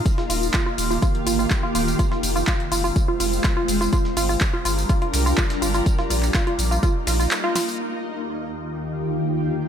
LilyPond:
<<
  \new Staff \with { instrumentName = "Synth pluck" } { \time 4/4 \key ees \major \tempo 4 = 124 r16 f'16 f'16 r16 f'16 f'16 r16 f'16 f'16 r16 f'16 f'16 r16 f'16 f'16 r16 | f'16 f'16 r16 f'16 f'16 r16 f'16 f'16 r16 f'16 f'16 r16 f'16 f'16 r16 f'16 | f'16 r16 f'16 f'16 r16 f'16 f'16 r16 f'16 f'16 r16 f'16 f'16 r16 f'16 f'16 | r16 f'16 f'16 r16 f'16 f'16 r16 f'16 f'16 r16 f'16 f'16 r16 f'16 f'16 r16 |
r1 | }
  \new Staff \with { instrumentName = "Ambient pad" } { \time 4/4 \key ees \major <ees bes f' g'>1 | <aes c'>1 | <g d' bes'>1 | <bes ees'>1 |
<ees, ees f' g'>1 | }
  \new Staff \with { instrumentName = "Sub bass" } { \clef bass \time 4/4 \key ees \major r8 ees,,8 r8 ees,,8 r8 g,,8 r8 ees,,8 | r8 f,,8 r8 f,,8 r8 f,,8 r8 f,,8 | r8 g,,8 r8 g,,8 r8 c,8 r8 g,,8 | r8 bes,,8 r8 bes,,8 r8 bes,,8 r4 |
r1 | }
  \new DrumStaff \with { instrumentName = "Drums" } \drummode { \time 4/4 <hh bd tamb>16 sn16 <hh hho tamb>16 tamb16 <hc hh bd sn tamb>8 <hh hho tamb>16 <sn tamb>16 <hh bd tamb>16 hh16 <hh hho tamb>16 tamb16 <hc hh bd sn tamb>8 <hh hho tamb>16 <sn tamb>16 | <hh bd tamb>16 sn16 <hh hho tamb>16 <sn tamb>16 <hc hh bd sn tamb>16 hh16 <hh hho tamb>16 tamb16 <hh bd tamb>8 <hh hho tamb>16 tamb16 <hc hh bd sn tamb>8 <hh hho tamb>16 <sn tamb>16 | <hh bd tamb>16 sn16 <hh hho tamb>16 tamb16 <hc hh bd sn tamb>8 <hh hho tamb>16 <sn tamb>16 <hh bd tamb>16 hh16 <hh hho sn tamb>16 tamb16 <hc hh bd tamb>16 <hh sn>16 <hho tamb>16 <hh tamb>16 | <hh bd tamb>16 sn16 <hh hho tamb>16 <hc sn tamb>16 <hc hh bd sn tamb>16 hh16 <hh hho tamb>16 tamb16 <hh bd tamb>8 <hh hho sn tamb>16 tamb16 <hc hh sn tamb>8 <hh hho sn tamb>16 <sn tamb>16 |
r4 r4 r4 r4 | }
>>